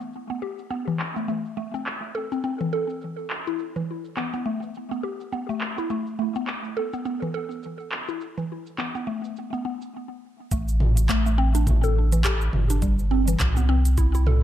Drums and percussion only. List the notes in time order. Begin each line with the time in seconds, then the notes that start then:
0.01 shaker
0.13 shaker
0.30 shaker
0.59 shaker
0.71 shaker
0.88 shaker
1.00 clap
1.17 shaker
1.29 shaker
1.45 shaker
1.74 shaker
1.86 clap, shaker
2.03 shaker
2.32 shaker
2.44 shaker
2.61 shaker
2.90 shaker
3.02 shaker
3.18 shaker
3.30 clap
3.47 shaker
3.59 shaker
3.76 shaker
4.05 shaker
4.17 clap, shaker
4.34 shaker
4.63 shaker
4.75 shaker
4.92 shaker
5.20 shaker
5.32 shaker
5.49 shaker
5.61 clap
5.78 shaker
5.90 shaker
6.07 shaker
6.35 shaker
6.47 clap, shaker
6.64 shaker
6.93 shaker
7.05 shaker
7.22 shaker
7.51 shaker
7.63 shaker
7.80 shaker
7.92 clap
8.09 shaker
8.21 shaker
8.38 shaker
8.66 shaker
8.79 clap, shaker
8.95 shaker
9.24 shaker
9.36 shaker
9.53 shaker
9.82 shaker
10.51 kick, closed hi-hat, shaker
10.68 shaker
10.80 mid tom
10.97 closed hi-hat, shaker
11.09 kick, clap, closed hi-hat, shaker
11.26 shaker
11.55 closed hi-hat, shaker
11.67 kick, closed hi-hat, mid tom, shaker
11.84 shaker
12.12 closed hi-hat, shaker
12.24 kick, clap, closed hi-hat, shaker
12.41 shaker
12.53 mid tom
12.70 closed hi-hat, shaker
12.82 kick, closed hi-hat, shaker
12.99 shaker
13.28 closed hi-hat, shaker
13.40 kick, clap, closed hi-hat, mid tom, shaker
13.57 shaker
13.85 closed hi-hat, shaker
13.98 kick, closed hi-hat, shaker
14.15 shaker
14.27 mid tom